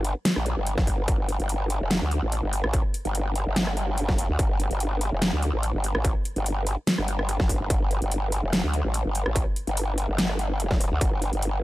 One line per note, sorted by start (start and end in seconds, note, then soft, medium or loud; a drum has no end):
0.00 0.14 G1 loud
0.05 closed hi-hat medium
0.25 snare loud
0.25 closed hi-hat medium
0.36 0.55 A#1 loud
0.36 cross-stick medium
0.46 closed hi-hat medium
0.57 0.76 G1 loud
0.67 closed hi-hat medium
0.78 1.06 G1 loud
0.78 kick loud
0.78 snare soft
0.87 kick medium
0.87 open hi-hat medium
1.08 1.38 G1 loud
1.08 kick loud
1.08 closed hi-hat medium
1.29 closed hi-hat soft
1.40 1.79 G1 loud
1.40 closed hi-hat soft
1.49 closed hi-hat medium
1.70 closed hi-hat medium
1.81 2.00 F1 loud
1.91 snare loud
1.91 closed hi-hat medium
2.02 2.21 D2 loud
2.11 closed hi-hat soft
2.22 2.41 A1 loud
2.32 closed hi-hat medium
2.43 2.62 G1 loud
2.53 open hi-hat medium
2.64 2.83 A1 medium
2.64 cross-stick medium
2.73 kick loud
2.73 closed hi-hat medium
2.94 closed hi-hat soft
3.05 3.45 G1 loud
3.05 closed hi-hat soft
3.15 closed hi-hat medium
3.36 closed hi-hat medium
3.47 4.04 G1 loud
3.56 snare loud
3.56 closed hi-hat medium
3.67 cross-stick medium
3.77 closed hi-hat medium
3.98 closed hi-hat medium
4.04 4.28 F#1 loud
4.09 kick loud
4.09 snare soft
4.18 open hi-hat medium
4.29 4.37 D2 loud
4.39 4.69 G1 loud
4.39 kick loud
4.39 closed hi-hat medium
4.60 closed hi-hat medium
4.71 5.10 G1 loud
4.71 closed hi-hat soft
4.80 closed hi-hat medium
5.01 closed hi-hat medium
5.12 5.31 F1 loud
5.22 snare loud
5.22 closed hi-hat medium
5.33 5.52 D2 loud
5.43 closed hi-hat medium
5.53 5.72 A1 loud
5.63 closed hi-hat medium
5.74 5.93 G1 loud
5.84 open hi-hat medium
5.95 6.14 A1 loud
5.95 cross-stick medium
6.05 kick loud
6.05 closed hi-hat medium
6.25 closed hi-hat medium
6.36 6.76 G1 loud
6.36 closed hi-hat soft
6.46 closed hi-hat medium
6.67 closed hi-hat medium
6.87 snare loud
6.87 closed hi-hat medium
6.98 7.38 G1 loud
6.98 cross-stick medium
7.08 closed hi-hat medium
7.19 cross-stick medium
7.29 closed hi-hat medium
7.40 7.59 G1 loud
7.40 kick loud
7.40 snare soft
7.49 kick medium
7.49 open hi-hat loud
7.60 7.68 G1 loud
7.70 8.00 G1 loud
7.70 kick loud
7.70 closed hi-hat medium
7.91 closed hi-hat medium
8.02 8.41 G1 loud
8.02 closed hi-hat soft
8.12 closed hi-hat medium
8.32 closed hi-hat medium
8.43 8.62 F1 loud
8.53 snare loud
8.53 closed hi-hat medium
8.64 8.83 D2 loud
8.74 closed hi-hat medium
8.85 9.03 A1 loud
8.94 closed hi-hat medium
9.05 9.24 G1 loud
9.15 open hi-hat loud
9.26 9.45 A1 medium
9.26 cross-stick medium
9.36 kick loud
9.36 closed hi-hat medium
9.56 closed hi-hat medium
9.67 10.07 G1 loud
9.67 closed hi-hat soft
9.77 closed hi-hat medium
9.98 closed hi-hat medium
10.09 10.90 G1 loud
10.18 snare loud
10.18 closed hi-hat medium
10.29 cross-stick medium
10.39 closed hi-hat medium
10.60 closed hi-hat medium
10.71 kick loud
10.71 snare soft
10.81 open hi-hat loud
10.92 11.00 D2 loud
11.01 11.31 G1 loud
11.01 kick loud
11.01 closed hi-hat medium
11.22 closed hi-hat medium
11.33 11.63 G1 loud
11.33 closed hi-hat soft
11.42 closed hi-hat medium